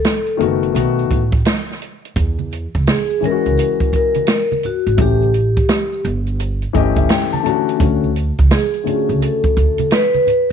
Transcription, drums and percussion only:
0.05 snare loud
0.05 closed hi-hat medium
0.27 closed hi-hat soft
0.40 closed hi-hat medium
0.63 closed hi-hat soft
0.76 closed hi-hat medium
0.99 closed hi-hat soft
1.11 kick medium
1.11 closed hi-hat medium
1.32 kick medium
1.32 closed hi-hat medium
1.45 snare loud
1.45 closed hi-hat medium
1.71 snare soft
1.82 closed hi-hat medium
2.05 closed hi-hat medium
2.16 kick loud
2.16 closed hi-hat medium
2.16 maracas medium
2.39 high conga soft
2.39 maracas soft
2.51 closed hi-hat medium
2.51 maracas soft
2.74 kick medium
2.74 closed hi-hat soft
2.74 maracas soft
2.87 snare loud
2.87 closed hi-hat medium
2.87 maracas medium
3.10 maracas soft
3.22 closed hi-hat medium
3.22 low conga medium
3.22 maracas soft
3.45 closed hi-hat soft
3.45 maracas soft
3.57 closed hi-hat medium
3.57 maracas medium
3.80 kick medium
3.80 closed hi-hat soft
3.80 maracas soft
3.92 kick medium
3.92 closed hi-hat medium
3.92 maracas soft
4.14 closed hi-hat medium
4.14 high conga medium
4.14 maracas soft
4.27 snare loud
4.27 closed hi-hat loud
4.27 maracas medium
4.52 high conga medium
4.52 maracas soft
4.63 closed hi-hat medium
4.63 low conga medium
4.63 maracas soft
4.87 closed hi-hat medium
4.87 maracas soft
4.98 kick loud
4.98 closed hi-hat medium
4.98 maracas medium
5.22 high conga soft
5.22 maracas soft
5.34 closed hi-hat medium
5.34 maracas soft
5.57 kick medium
5.57 closed hi-hat soft
5.57 maracas soft
5.69 snare loud
5.69 closed hi-hat medium
5.69 maracas medium
5.93 maracas soft
6.04 closed hi-hat medium
6.04 low conga soft
6.04 maracas soft
6.27 closed hi-hat soft
6.27 maracas soft
6.40 closed hi-hat medium
6.40 maracas medium
6.62 closed hi-hat soft
6.62 maracas soft
6.74 kick medium
6.74 closed hi-hat medium
6.74 maracas soft
6.96 kick loud
6.96 closed hi-hat soft
6.96 high conga medium
6.96 maracas soft
7.09 snare loud
7.09 closed hi-hat medium
7.09 maracas medium
7.33 closed hi-hat soft
7.33 high conga medium
7.33 maracas soft
7.46 closed hi-hat medium
7.46 low conga medium
7.46 maracas soft
7.68 closed hi-hat medium
7.68 maracas soft
7.80 kick loud
7.80 closed hi-hat medium
7.80 maracas medium
8.04 high conga soft
8.04 maracas soft
8.16 closed hi-hat medium
8.16 maracas soft
8.38 kick medium
8.38 closed hi-hat soft
8.38 maracas soft
8.51 snare loud
8.51 closed hi-hat medium
8.51 maracas medium
8.74 closed hi-hat soft
8.74 maracas soft
8.87 closed hi-hat medium
8.87 low conga soft
8.87 maracas soft
9.09 closed hi-hat soft
9.09 maracas soft
9.22 closed hi-hat medium
9.22 maracas medium
9.44 kick medium
9.44 closed hi-hat soft
9.44 maracas soft
9.57 kick medium
9.57 closed hi-hat medium
9.57 maracas soft
9.78 closed hi-hat medium
9.78 high conga medium
9.78 maracas soft
9.91 snare loud
9.91 closed hi-hat loud
9.91 maracas medium
10.15 high conga medium
10.15 maracas soft
10.27 closed hi-hat medium
10.27 low conga medium
10.27 maracas soft

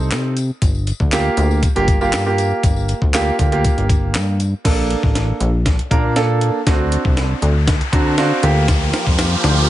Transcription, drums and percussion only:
0.00 tambourine soft
0.11 snare medium
0.11 clap loud
0.11 closed hi-hat medium
0.11 tambourine medium
0.37 closed hi-hat medium
0.37 tambourine medium
0.62 kick loud
0.62 closed hi-hat medium
0.62 tambourine medium
0.75 tambourine soft
0.87 closed hi-hat medium
0.87 tambourine medium
1.00 kick medium
1.12 snare medium
1.12 clap loud
1.12 closed hi-hat medium
1.12 tambourine medium
1.37 closed hi-hat medium
1.37 tambourine soft
1.51 tambourine soft
1.63 kick loud
1.63 closed hi-hat medium
1.63 tambourine soft
1.76 closed hi-hat medium
1.88 kick loud
1.88 closed hi-hat medium
1.88 tambourine soft
2.01 tambourine soft
2.13 snare loud
2.13 clap loud
2.13 closed hi-hat medium
2.13 tambourine medium
2.38 closed hi-hat medium
2.38 tambourine medium
2.63 kick loud
2.63 closed hi-hat medium
2.63 tambourine medium
2.76 tambourine soft
2.88 closed hi-hat medium
2.88 tambourine medium
3.02 kick medium
3.14 snare medium
3.14 clap loud
3.14 closed hi-hat medium
3.14 tambourine medium
3.39 kick medium
3.39 closed hi-hat medium
3.39 tambourine soft
3.52 closed hi-hat medium
3.64 kick medium
3.64 closed hi-hat medium
3.64 tambourine soft
3.78 closed hi-hat medium
3.90 kick loud
3.90 closed hi-hat medium
3.90 tambourine soft
4.14 snare medium
4.14 clap loud
4.14 closed hi-hat medium
4.14 tambourine medium
4.40 closed hi-hat medium
4.40 tambourine medium
4.65 kick loud
4.65 snare soft
4.65 closed hi-hat medium
4.65 crash medium
4.91 closed hi-hat medium
5.03 kick medium
5.15 snare medium
5.15 closed hi-hat medium
5.40 closed hi-hat medium
5.66 kick loud
5.66 snare medium
5.66 closed hi-hat medium
5.79 closed hi-hat medium
5.91 kick loud
5.91 closed hi-hat medium
6.16 snare medium
6.16 closed hi-hat medium
6.41 closed hi-hat medium
6.67 kick loud
6.67 snare medium
6.67 closed hi-hat medium
6.92 closed hi-hat medium
7.05 kick medium
7.17 snare medium
7.17 closed hi-hat medium
7.42 closed hi-hat medium
7.67 kick loud
7.67 snare medium
7.67 closed hi-hat medium
7.81 closed hi-hat medium
7.93 kick loud
7.93 closed hi-hat medium
8.18 snare medium
8.18 closed hi-hat medium
8.43 closed hi-hat medium
8.68 kick loud
8.68 snare medium
8.68 closed hi-hat loud
8.68 tambourine medium
8.93 snare medium
8.93 closed hi-hat medium
8.93 tambourine medium
9.07 kick medium
9.19 snare medium
9.19 closed hi-hat medium
9.19 tambourine medium
9.44 snare medium
9.44 closed hi-hat medium
9.44 tambourine soft
9.58 tambourine soft

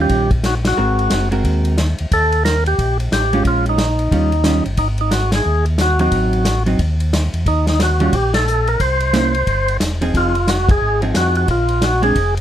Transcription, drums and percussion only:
0.09 kick soft
0.09 ride medium
0.31 kick soft
0.31 ride soft
0.43 snare medium
0.43 hi-hat pedal medium
0.43 ride medium
0.65 snare medium
0.65 ride medium
0.99 ride soft
1.10 snare medium
1.10 hi-hat pedal soft
1.10 ride medium
1.32 ride soft
1.44 kick soft
1.44 ride soft
1.65 ride soft
1.78 snare medium
1.78 hi-hat pedal soft
1.78 ride medium
1.98 ride soft
2.12 kick soft
2.12 ride medium
2.32 ride soft
2.45 snare medium
2.45 hi-hat pedal medium
2.45 ride medium
2.66 ride soft
2.79 kick soft
2.79 ride medium
3.00 ride soft
3.12 snare medium
3.12 hi-hat pedal medium
3.12 ride medium
3.33 ride soft
3.45 kick soft
3.45 ride medium
3.66 ride soft
3.78 snare medium
3.78 hi-hat pedal medium
3.78 ride medium
3.99 ride soft
4.11 kick soft
4.11 ride soft
4.32 ride soft
4.44 snare medium
4.44 hi-hat pedal medium
4.44 ride medium
4.65 ride soft
4.77 kick soft
4.77 ride medium
4.98 ride soft
5.11 snare medium
5.11 hi-hat pedal soft
5.11 ride medium
5.32 snare medium
5.32 ride medium
5.66 ride soft
5.78 snare medium
5.78 hi-hat pedal medium
5.78 ride medium
5.99 ride soft
6.12 kick soft
6.12 ride medium
6.33 ride soft
6.45 snare medium
6.45 hi-hat pedal medium
6.45 ride medium
6.66 ride soft
6.79 kick soft
6.79 ride medium
7.00 ride soft
7.13 snare medium
7.13 hi-hat pedal medium
7.13 ride medium
7.34 ride soft
7.46 kick soft
7.46 ride medium
7.67 snare soft
7.67 ride soft
7.80 snare medium
7.80 hi-hat pedal medium
7.80 ride medium
8.00 ride soft
8.13 kick soft
8.13 ride medium
8.34 snare medium
8.34 ride medium
8.47 hi-hat pedal medium
8.67 ride soft
8.80 kick soft
8.80 ride medium
9.00 ride soft
9.13 snare medium
9.13 hi-hat pedal medium
9.13 ride medium
9.34 ride soft
9.47 kick soft
9.47 ride soft
9.68 ride soft
9.80 snare medium
9.80 hi-hat pedal medium
9.80 ride medium
10.02 ride soft
10.14 kick soft
10.14 ride soft
10.35 ride soft
10.48 snare medium
10.48 hi-hat pedal medium
10.48 ride medium
10.69 kick medium
10.69 ride medium
11.02 ride soft
11.14 snare medium
11.14 hi-hat pedal medium
11.14 ride medium
11.35 ride soft
11.48 kick soft
11.48 ride medium
11.68 ride soft
11.82 snare medium
11.82 hi-hat pedal soft
11.82 ride medium
12.03 ride soft
12.15 kick soft
12.15 ride medium
12.37 ride soft

